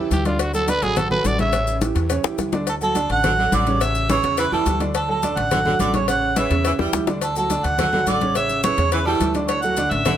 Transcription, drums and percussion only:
0.11 cowbell, high conga, maracas
0.25 cowbell, high conga, maracas
0.39 cowbell, maracas
0.54 high conga, maracas
0.68 cowbell, high conga, maracas
0.82 cowbell, high conga, maracas
0.96 cowbell, high conga, low conga, maracas
1.11 high conga, low conga
1.24 cowbell, high conga, maracas
1.39 cowbell, high conga, maracas
1.53 cowbell, high conga, maracas
1.67 high conga, maracas
1.81 cowbell, high conga, maracas
1.96 cowbell, high conga, maracas
2.10 cowbell, high conga, maracas
2.24 high bongo, high conga, maracas
2.38 cowbell, high bongo, high conga, maracas
2.52 cowbell, low bongo, high conga, maracas
2.67 cowbell, high conga, maracas
2.81 high conga, maracas
2.95 cowbell, high conga, maracas
3.10 cowbell, high conga, maracas
3.24 cowbell, high conga, low conga, maracas
3.52 cowbell, high conga, maracas
3.66 cowbell, high conga, maracas
3.81 cowbell, high conga, maracas
3.95 high conga, maracas
4.09 cowbell, high conga, maracas
4.23 cowbell, high conga, maracas
4.37 cowbell, high conga, maracas
4.52 high conga
4.66 cowbell, high conga, maracas
4.80 cowbell, high conga, maracas
4.94 cowbell, high conga, maracas
5.09 high conga
5.23 cowbell, high conga, maracas
5.37 cowbell, high conga, maracas
5.51 cowbell, high conga, low conga, maracas
5.65 high conga, low conga
5.80 cowbell, high conga, maracas
5.94 cowbell, high conga, maracas
6.08 cowbell, high conga, maracas
6.22 high conga
6.36 cowbell, high conga, maracas
6.50 cowbell, high conga, maracas
6.65 cowbell, high conga, maracas
6.79 high bongo, high conga
6.93 cowbell, high bongo, high conga, maracas
7.07 cowbell, low bongo, high conga, maracas
7.21 cowbell, high conga, maracas
7.36 high conga, maracas
7.50 cowbell, high conga, maracas
7.64 cowbell, high conga, maracas
7.78 cowbell, high conga, low conga, maracas
7.93 high conga, low conga
8.07 cowbell, high conga, maracas
8.21 cowbell, high conga, maracas
8.35 cowbell, high conga, maracas
8.49 high conga, maracas
8.63 cowbell, high conga, maracas
8.78 cowbell, high conga, maracas
8.92 cowbell, high conga, maracas
9.07 high conga
9.20 cowbell, high conga, maracas
9.34 cowbell, high conga, maracas
9.48 cowbell, high conga, maracas
9.62 high conga, maracas
9.77 cowbell, high conga, maracas
9.91 cowbell, high conga, maracas
10.05 cowbell, high conga, low conga, maracas

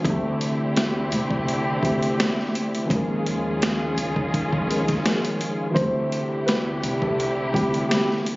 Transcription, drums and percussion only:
0.05 kick, closed hi-hat
0.41 closed hi-hat
0.77 snare, closed hi-hat
1.12 closed hi-hat
1.31 kick
1.48 closed hi-hat
1.83 kick, closed hi-hat
2.03 closed hi-hat
2.20 snare, closed hi-hat
2.39 snare
2.55 closed hi-hat
2.75 closed hi-hat
2.90 kick, closed hi-hat
3.26 closed hi-hat
3.62 snare, closed hi-hat
3.98 closed hi-hat
4.16 kick
4.34 kick, closed hi-hat
4.53 kick
4.71 closed hi-hat
4.88 kick, snare, closed hi-hat
5.06 snare, closed hi-hat
5.25 closed hi-hat
5.41 closed hi-hat
5.76 kick, closed hi-hat
6.12 closed hi-hat
6.48 snare, closed hi-hat
6.83 closed hi-hat
7.02 kick
7.20 closed hi-hat
7.54 kick, closed hi-hat
7.74 closed hi-hat
7.91 snare, closed hi-hat
8.11 snare
8.26 closed hi-hat

